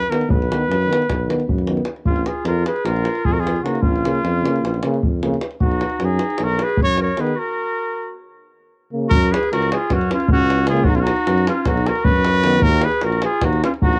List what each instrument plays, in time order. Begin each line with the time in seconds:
Already playing: trumpet B4
0.03 davul high
0.09 trombone D#3, euphonium B3, trumpet A#4, davul high
0.21 davul high
0.28 tuba B1, trumpet B4, davul low
0.42 davul high
0.49 trombone D#3, euphonium B3, davul high
0.68 tuba F#2, davul high
0.82 davul high
0.86 trombone D#3, euphonium B3
0.93 davul high
1.02 davul high
1.09 tuba B1, davul high, davul low
1.27 trombone D#3, euphonium B3, davul high
1.40 davul high
1.48 tuba F#2, davul low
1.58 davul high
1.66 trombone D#3, euphonium B3, davul high
1.77 davul high
1.85 davul high
1.96 davul high
2.04 tuba A#1, clarinet C#4, trumpet F4, davul low
2.16 davul high
2.26 clarinet F4, trumpet G#4, davul high
2.45 tuba F2, clarinet F4, trumpet A#4, davul high
2.66 clarinet G#4, trumpet B4, davul high
2.76 davul high
2.85 tuba A#1, clarinet F4, trumpet A#4, davul high
2.96 davul high
3.05 davul high
3.15 davul high
3.23 tuba F2, clarinet F4, trumpet G#4, davul low
3.33 clarinet F#4, trumpet A#4
3.40 clarinet F4, trumpet G#4
3.47 davul high
3.56 davul high
3.62 trombone C#3, euphonium A#3, clarinet D#4, trumpet F#4, davul high
3.75 davul high
3.81 tuba A#1, clarinet C#4, trumpet F4, davul low
3.96 davul high
4.03 trombone C#3, euphonium A#3, davul high
4.15 davul high
4.24 tuba F2, davul high
4.42 trombone C#3, euphonium A#3, davul high
4.56 davul high
4.61 tuba A#1, davul high
4.74 davul high
4.83 trombone C#3, euphonium A#3, davul high
4.94 davul high
5.03 tuba F2, davul low
5.22 trombone C#3, euphonium A#3, davul high
5.34 davul high
5.41 davul high
5.51 davul high
5.61 tuba B1, clarinet D#4, trumpet F#4, davul low
5.71 davul high
5.81 davul high
5.90 davul high
6.00 tuba F#2, clarinet D#4, davul high
6.05 trumpet G#4
6.19 davul high
6.30 davul high
6.38 tuba B1, davul high
6.43 clarinet F#4, trumpet A#4
6.49 davul high
6.59 trumpet B4, davul high
6.64 clarinet G#4
6.69 davul high
6.77 tuba F#2, davul low
6.83 clarinet F#4, trumpet C#5
6.98 clarinet A#4, davul high
7.03 trumpet C#5
7.07 davul high
7.17 trombone D#3, euphonium B3, clarinet G#4, trumpet B4, davul high
7.27 davul high
7.36 clarinet F#4, trumpet A#4
8.92 trombone C#3, euphonium A#3
9.08 tuba F#2, clarinet F#4, trumpet A#4, davul low
9.23 davul high
9.32 clarinet G#4, trumpet B4, davul high
9.43 davul high
9.52 tuba C#2, clarinet F#4, trumpet A#4, davul high
9.62 davul high
9.72 trumpet G#4, davul high
9.76 clarinet F4
9.90 tuba F#2, trumpet F#4, davul high, davul low
9.95 clarinet C#4
10.01 davul high
10.11 clarinet C#4, trumpet F4, davul high
10.20 davul high
10.28 tuba C#2, clarinet C#4, trumpet F#4, davul low
10.40 davul high
10.50 davul high
10.58 davul high
10.67 trombone C#3, clarinet F4, trumpet G#4, davul high
10.71 euphonium A#3
10.77 davul high
10.84 tuba B1, trumpet F#4, davul low
10.88 clarinet D#4
10.95 clarinet C#4, trumpet F4, davul high
11.00 clarinet D#4, trumpet F#4
11.07 davul high
11.16 davul high
11.27 tuba F#2, davul high
11.38 davul high
11.47 clarinet C#4, trumpet F4, davul high
11.65 tuba B1, clarinet D#4, trumpet F#4, davul high, davul low
11.77 davul high
11.86 clarinet F#4, trumpet A#4, davul high
11.95 davul high
12.04 tuba F#2, trumpet B4, davul low
12.09 clarinet F#4
12.16 davul high
12.25 davul high
12.34 davul high
12.44 trombone D#3, euphonium B3, davul high
12.53 davul high
12.62 tuba D#2, clarinet F#4, trumpet A#4, davul low
12.71 davul high
12.82 clarinet G#4, trumpet B4, davul high
12.92 davul high
13.01 tuba A#1, trumpet A#4, davul high
13.05 clarinet F#4
13.12 davul high
13.22 clarinet F4, trumpet G#4, davul high
13.41 tuba D#2, clarinet D#4, trumpet F#4, davul high, davul low
13.53 davul high
13.64 clarinet C#4, trumpet F4, davul high
13.74 davul high
13.80 tuba A#1, clarinet D#4, trumpet F#4, davul low
13.93 davul high